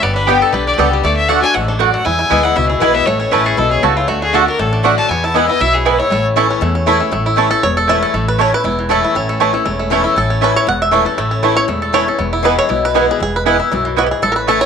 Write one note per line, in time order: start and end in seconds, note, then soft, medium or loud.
0.02 0.40 G1 medium
0.02 0.50 G2 medium
0.02 0.39 B3 medium
0.02 0.14 D5 medium
0.15 0.51 D4 medium
0.15 0.28 B4 medium
0.27 0.51 D3 medium
0.27 0.52 G3 medium
0.27 0.37 B3 loud
0.27 0.53 B3 loud
0.27 0.43 G4 medium
0.27 0.37 G4 loud
0.27 0.53 G4 medium
0.27 0.53 G4 loud
0.27 0.37 D5 medium
0.27 0.37 G5 loud
0.41 0.54 A4 medium
0.41 0.77 A4 medium
0.53 0.75 B1 medium
0.53 0.76 D3 loud
0.53 0.90 G4 medium
0.53 0.66 B4 medium
0.67 1.02 D4 medium
0.67 0.74 D5 medium
0.78 1.00 C#2 medium
0.78 1.02 D3 medium
0.78 1.03 G3 medium
0.78 0.88 B3 loud
0.78 1.03 B3 medium
0.78 0.88 G4 medium
0.78 1.03 G4 medium
0.78 1.04 A4 medium
0.78 0.88 D5 loud
0.78 0.88 G5 medium
0.93 1.05 G4 medium
1.04 1.42 D2 medium
1.04 1.28 D3 medium
1.04 1.40 A3 medium
1.04 1.16 D5 medium
1.17 1.30 E5 loud
1.28 1.42 D3 medium
1.28 1.39 A3 loud
1.28 1.42 A3 medium
1.28 1.42 D4 medium
1.28 1.39 F#4 medium
1.28 1.40 F#4 medium
1.28 1.65 A4 medium
1.28 1.39 D5 loud
1.28 1.41 F#5 loud
1.28 1.39 F#5 medium
1.41 1.54 D4 soft
1.41 1.67 D4 medium
1.41 1.53 F#4 medium
1.41 1.56 G#5 loud
1.54 1.93 A1 medium
1.54 1.79 G#2 medium
1.54 1.91 A3 medium
1.54 1.68 F#5 medium
1.68 2.03 D4 medium
1.68 1.82 A4 soft
1.79 2.04 F#2 medium
1.79 1.89 A3 loud
1.79 1.89 F#4 medium
1.79 2.05 F#4 medium
1.79 1.89 D5 loud
1.79 1.96 D5 medium
1.79 1.89 F#5 medium
1.94 2.06 A3 medium
1.94 2.06 F#5 loud
2.05 2.53 E2 medium
2.05 2.25 E2 medium
2.05 2.18 E4 medium
2.05 2.45 G#5 loud
2.19 2.30 E4 medium
2.30 2.52 D2 medium
2.30 2.54 E3 medium
2.30 2.55 G#3 medium
2.30 2.40 B3 medium
2.30 2.55 B3 medium
2.30 2.40 E4 loud
2.30 2.44 E4 medium
2.30 2.56 E4 medium
2.30 2.40 B4 medium
2.30 2.40 G#5 medium
2.43 2.55 E4 medium
2.43 2.58 F#5 medium
2.56 2.78 C#2 medium
2.56 3.04 B2 loud
2.56 2.68 E4 medium
2.56 2.68 E5 medium
2.68 2.80 E4 medium
2.68 2.81 G#4 soft
2.79 3.03 B1 medium
2.79 3.05 E3 medium
2.79 3.06 G#3 loud
2.79 2.90 B3 medium
2.79 3.06 B3 medium
2.79 2.91 E4 medium
2.79 3.07 E4 medium
2.79 3.06 E4 loud
2.79 2.96 B4 medium
2.79 2.91 B4 medium
2.79 2.91 G#5 loud
2.94 3.07 B3 medium
2.94 3.07 E5 loud
3.06 3.26 A1 medium
3.06 3.55 A2 medium
3.06 3.43 A3 medium
3.06 3.34 C#5 medium
3.20 3.55 C#4 medium
3.31 3.54 A1 medium
3.31 3.56 E3 medium
3.31 3.41 A3 medium
3.31 3.56 A3 medium
3.31 3.57 C#4 medium
3.31 3.41 E4 loud
3.31 3.57 E4 medium
3.31 3.47 B4 medium
3.31 3.42 C#5 medium
3.31 3.42 A5 loud
3.45 3.59 G#4 medium
3.45 3.81 A4 medium
3.57 3.79 B1 medium
3.57 3.82 B2 medium
3.57 3.94 E4 medium
3.57 3.70 A4 loud
3.71 4.06 C#4 medium
3.71 3.84 G#4 medium
3.83 4.04 C#2 medium
3.83 4.07 C#3 medium
3.83 3.92 A3 medium
3.83 3.93 E4 medium
3.83 3.98 F#4 medium
3.83 4.08 A4 medium
3.83 3.93 C#5 loud
3.83 3.93 A5 loud
3.96 4.08 E4 medium
3.96 4.09 F4 medium
4.08 4.46 D2 medium
4.08 4.32 D3 medium
4.08 4.44 A3 medium
4.08 4.21 F#4 medium
4.22 4.57 F#4 medium
4.22 4.35 G#4 medium
4.33 4.46 D3 medium
4.33 4.46 A3 medium
4.33 4.43 A3 medium
4.33 4.47 D4 medium
4.33 4.43 F#4 loud
4.33 4.46 F#4 medium
4.33 4.46 A4 medium
4.33 4.70 A4 medium
4.33 4.44 D5 loud
4.33 4.44 F#5 loud
4.47 4.71 D4 medium
4.47 4.59 D4 soft
4.47 4.58 F#4 medium
4.47 4.61 A#4 medium
4.59 4.97 A1 medium
4.59 5.07 A2 medium
4.59 4.95 A3 medium
4.59 4.84 A4 medium
4.73 5.07 D4 medium
4.83 5.08 D3 medium
4.83 4.94 A3 loud
4.83 5.08 A3 medium
4.83 5.09 D4 medium
4.83 4.94 F#4 medium
4.83 5.10 F#4 medium
4.83 5.09 F#4 loud
4.83 4.94 D5 loud
4.83 4.94 F#5 loud
4.98 5.10 A3 medium
4.98 5.10 A5 loud
5.08 5.58 E2 medium
5.08 5.48 E2 medium
5.08 5.46 B3 medium
5.08 5.26 G#5 loud
5.24 5.36 E4 medium
5.24 5.37 A5 loud
5.34 5.47 E3 medium
5.34 5.48 G#3 medium
5.34 5.44 B3 loud
5.34 5.48 B3 loud
5.34 5.44 E4 medium
5.34 5.49 E4 medium
5.34 5.47 E4 loud
5.34 5.45 B4 medium
5.34 5.47 F#5 medium
5.34 5.45 G#5 loud
5.48 5.61 B3 medium
5.48 5.60 E4 medium
5.48 5.61 E4 medium
5.48 5.62 D#5 loud
5.60 5.98 B1 medium
5.60 5.84 F#2 loud
5.60 5.86 E4 medium
5.60 5.75 E5 loud
5.74 6.09 B3 medium
5.74 5.87 G#4 medium
5.85 6.10 G#2 medium
5.85 5.95 B3 medium
5.85 5.95 E4 loud
5.85 6.00 E4 medium
5.85 5.95 B4 medium
5.85 6.00 B4 medium
5.85 5.96 G#5 loud
5.99 6.87 E4 medium
5.99 6.24 C#5 loud
6.10 6.49 A1 medium
6.10 6.59 A2 medium
6.10 6.48 A3 medium
6.36 6.60 E3 medium
6.36 6.46 A3 loud
6.36 6.60 A3 medium
6.36 6.61 C#4 medium
6.36 6.46 E4 loud
6.36 6.61 E4 medium
6.36 6.73 A4 medium
6.36 6.46 C#5 loud
6.36 6.46 A5 loud
6.50 6.74 C#4 medium
6.61 7.10 E2 loud
6.61 6.99 E2 medium
6.61 6.98 A3 medium
6.75 7.10 C#4 medium
6.86 6.99 E3 medium
6.86 6.96 A3 medium
6.86 7.00 A3 medium
6.86 7.00 C#4 medium
6.86 7.12 E4 medium
6.86 6.97 E4 medium
6.86 6.98 E4 loud
6.86 6.97 C#5 medium
6.86 6.97 A5 medium
6.99 7.11 A3 medium
6.99 7.12 C#4 soft
6.99 7.11 E4 medium
7.11 7.50 A1 medium
7.11 7.60 A2 medium
7.11 8.14 A3 medium
7.26 8.64 E4 medium
7.36 7.50 E3 medium
7.36 7.47 A3 medium
7.36 7.50 A3 medium
7.36 7.51 C#4 medium
7.36 7.47 E4 loud
7.36 7.50 E4 medium
7.36 7.50 A4 medium
7.36 7.47 C#5 loud
7.36 7.47 A5 medium
7.51 7.64 C#4 soft
7.51 7.62 E4 medium
7.51 7.62 A4 medium
7.63 8.01 E1 medium
7.63 8.12 E2 medium
7.63 7.77 C#5 loud
7.77 7.89 A4 medium
7.87 8.13 E3 medium
7.87 7.97 A3 medium
7.87 8.13 A3 medium
7.87 8.13 C#4 loud
7.87 7.98 E4 medium
7.87 8.14 E4 medium
7.87 7.98 C#5 medium
7.87 8.03 E5 loud
7.87 7.98 A5 loud
8.03 8.28 A4 medium
8.14 8.52 A1 medium
8.14 8.62 A2 medium
8.14 8.57 A3 medium
8.28 8.39 B4 medium
8.38 8.52 E3 medium
8.38 8.48 A3 medium
8.38 8.52 A3 medium
8.38 8.53 C#4 medium
8.38 8.48 E4 medium
8.38 8.51 E4 loud
8.38 8.48 C#5 loud
8.38 8.53 C#5 medium
8.38 8.49 A5 loud
8.52 8.65 C#4 soft
8.52 8.64 E4 medium
8.52 8.88 B4 loud
8.64 9.02 E1 medium
8.64 9.13 E2 medium
8.64 9.04 E4 medium
8.79 10.19 E3 medium
8.89 9.14 E3 medium
8.89 8.99 A3 medium
8.89 9.14 A3 medium
8.89 9.15 C#4 medium
8.89 8.99 E4 medium
8.89 9.15 E4 loud
8.89 9.27 A4 medium
8.89 8.99 C#5 medium
8.89 9.00 A5 loud
9.04 9.40 E4 medium
9.15 9.53 A1 medium
9.15 9.64 A2 medium
9.15 9.65 C#4 medium
9.29 9.53 A3 medium
9.40 9.53 E3 medium
9.40 9.50 A3 loud
9.40 9.54 A3 medium
9.40 9.54 C#4 medium
9.40 10.04 E4 medium
9.40 9.50 E4 medium
9.40 9.52 E4 medium
9.40 9.50 C#5 loud
9.40 9.50 A5 loud
9.53 9.79 A3 medium
9.53 9.66 C#4 soft
9.53 9.65 E4 medium
9.65 10.04 E1 medium
9.65 10.14 E2 medium
9.65 9.91 C#4 medium
9.79 10.44 A3 medium
9.90 10.15 E3 medium
9.90 10.15 A3 medium
9.90 10.01 A3 loud
9.90 10.27 C#4 medium
9.90 10.16 C#4 loud
9.90 10.01 E4 loud
9.90 10.16 E4 loud
9.90 10.01 C#5 loud
9.90 10.01 A5 medium
10.04 10.68 E4 medium
10.16 10.55 A1 medium
10.16 10.65 A2 medium
10.16 10.41 A4 medium
10.30 10.65 C#4 medium
10.41 10.66 E3 medium
10.41 10.51 A3 medium
10.41 10.66 A3 medium
10.41 10.67 C#4 medium
10.41 10.51 E4 medium
10.41 10.67 E4 loud
10.41 10.56 B4 medium
10.41 10.52 C#5 medium
10.41 10.52 A5 loud
10.56 10.67 C#5 loud
10.67 11.05 E1 medium
10.67 11.15 E2 medium
10.67 10.82 F#5 loud
10.82 10.93 E5 loud
10.91 11.05 E3 medium
10.91 11.02 A3 medium
10.91 11.05 A3 medium
10.91 11.06 C#4 medium
10.91 11.02 E4 medium
10.91 11.43 E4 medium
10.91 11.04 E4 loud
10.91 11.02 C#5 loud
10.91 11.02 A5 medium
11.05 11.18 C#4 soft
11.05 11.17 E4 medium
11.05 11.41 A4 medium
11.17 11.56 A1 medium
11.17 11.67 A2 medium
11.17 11.54 A3 medium
11.31 11.66 C#4 medium
11.43 11.56 E3 medium
11.43 11.53 A3 medium
11.43 11.56 A3 medium
11.43 11.57 C#4 medium
11.43 12.32 E4 medium
11.43 11.53 E4 medium
11.43 11.54 E4 medium
11.43 11.53 C#5 loud
11.43 11.53 A5 medium
11.55 11.69 C#4 medium
11.55 11.68 E4 medium
11.55 11.68 C#5 loud
11.68 12.07 E1 medium
11.68 12.17 E2 medium
11.68 12.05 A3 medium
11.82 12.07 A4 medium
11.93 12.06 E3 medium
11.93 12.07 A3 medium
11.93 12.03 A3 loud
11.93 12.07 C#4 loud
11.93 12.04 E4 loud
11.93 12.05 E4 loud
11.93 12.18 C#5 loud
11.93 12.04 C#5 medium
11.93 12.04 A5 loud
12.07 12.20 C#4 medium
12.07 12.19 E4 medium
12.07 12.20 A4 medium
12.19 12.57 E1 medium
12.19 12.67 E2 medium
12.19 12.55 B3 medium
12.33 12.69 E4 medium
12.43 12.68 E3 medium
12.43 12.69 G#3 medium
12.43 12.54 B3 medium
12.43 12.69 B3 medium
12.43 12.54 E4 medium
12.43 12.69 E4 medium
12.43 12.55 B4 loud
12.43 12.58 B4 loud
12.43 12.55 G#5 loud
12.59 12.85 C#5 loud
12.69 13.08 B1 loud
12.69 13.18 B2 medium
12.69 13.36 E4 medium
12.85 13.08 B4 loud
12.94 13.19 E3 medium
12.94 13.20 G#3 medium
12.94 13.05 B3 medium
12.94 13.32 B3 medium
12.94 13.20 B3 medium
12.94 13.05 E4 loud
12.94 13.20 E4 medium
12.94 13.05 B4 loud
12.94 13.05 G#5 loud
13.11 13.21 G#4 medium
13.20 13.59 E1 medium
13.20 13.69 E2 medium
13.20 13.36 G#4 loud
13.36 13.46 B4 medium
13.46 13.59 E3 medium
13.46 13.59 G#3 medium
13.46 13.55 B3 medium
13.46 13.60 B3 medium
13.46 13.56 E4 loud
13.46 13.60 E4 medium
13.46 13.58 E4 loud
13.46 13.56 B4 loud
13.46 13.56 G#5 loud
13.60 13.72 B3 soft
13.60 13.72 E4 medium
13.60 13.71 E4 medium
13.72 14.10 B1 medium
13.72 13.96 F#2 loud
13.72 14.31 E4 medium
13.85 14.35 E3 medium
13.96 14.22 G#2 medium
13.96 14.06 B3 medium
13.96 14.06 E4 loud
13.96 14.06 F#4 loud
13.96 14.07 B4 loud
13.96 14.07 G#5 medium
14.06 14.10 G4 medium
14.11 14.22 G#4 medium
14.22 14.61 A1 medium
14.22 14.66 A2 medium
14.22 14.33 A4 loud
14.32 14.36 A#4 medium
14.36 14.47 B4 medium
14.47 14.61 E3 medium
14.47 14.57 A3 medium
14.47 14.61 A3 medium
14.47 14.61 C#4 medium
14.47 14.57 E4 loud
14.47 14.60 E4 medium
14.47 14.61 A4 loud
14.47 14.58 C#5 loud
14.47 14.58 A5 loud
14.61 14.66 E4 medium
14.61 14.66 C#5 loud